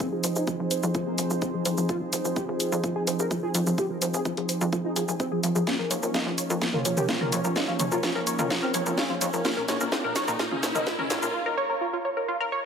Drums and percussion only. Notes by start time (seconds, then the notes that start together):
0.00 kick
0.24 open hi-hat, shaker
0.36 shaker
0.47 kick, shaker
0.71 open hi-hat, shaker
0.83 shaker
0.94 kick, shaker
1.18 open hi-hat, shaker
1.30 shaker
1.42 kick, shaker
1.65 open hi-hat, shaker
1.77 shaker
1.89 kick, shaker
2.13 open hi-hat, shaker
2.25 shaker
2.36 kick, shaker
2.60 open hi-hat, shaker
2.72 shaker
2.84 kick, shaker
3.07 open hi-hat, shaker
3.19 shaker
3.31 kick, shaker
3.55 open hi-hat, shaker
3.67 shaker
3.78 kick, shaker
4.02 open hi-hat, shaker
4.14 shaker
4.25 kick, shaker
4.37 open hi-hat
4.49 open hi-hat, shaker
4.61 shaker
4.73 kick, shaker
4.96 open hi-hat, shaker
5.08 shaker
5.20 kick, shaker
5.43 open hi-hat, shaker
5.56 shaker
5.67 kick, snare, shaker
5.91 open hi-hat, shaker
6.03 shaker
6.14 kick, snare, shaker
6.38 open hi-hat, shaker
6.50 shaker
6.62 kick, snare, shaker
6.74 mid tom
6.85 open hi-hat, shaker
6.97 mid tom, shaker
7.09 kick, snare, shaker
7.21 mid tom
7.32 open hi-hat, shaker
7.44 shaker
7.56 kick, snare, shaker
7.80 open hi-hat, mid tom, shaker
7.92 shaker
8.03 kick, snare, shaker
8.27 open hi-hat, shaker
8.39 mid tom, shaker
8.50 kick, snare, shaker
8.74 open hi-hat, shaker
8.86 shaker
8.98 kick, snare, shaker
9.21 open hi-hat, shaker
9.33 shaker
9.45 kick, snare, shaker
9.68 snare, open hi-hat, shaker
9.80 shaker
9.92 kick, snare, shaker
10.16 snare, open hi-hat, shaker
10.28 shaker
10.39 kick, snare, shaker
10.51 mid tom
10.63 snare, open hi-hat, shaker
10.75 mid tom, shaker
10.87 kick, snare, shaker
10.99 mid tom
11.10 snare, open hi-hat, shaker
11.22 shaker